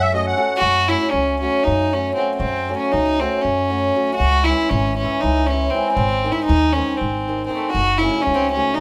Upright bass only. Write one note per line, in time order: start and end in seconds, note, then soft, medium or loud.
0.00 0.31 F#2 medium
0.62 0.93 F#2 medium
1.13 1.45 C#2 medium
1.67 2.11 F#2 medium
2.40 2.71 F#2 medium
2.93 3.25 C#2 medium
3.45 3.89 F#2 medium
4.20 4.51 C#2 medium
4.71 5.02 G#1 medium
5.24 5.68 C#2 medium
5.97 6.28 G#1 medium
6.49 6.81 D#2 medium
7.01 7.45 G#1 medium
7.74 8.06 F#1 medium
8.27 8.58 C#2 medium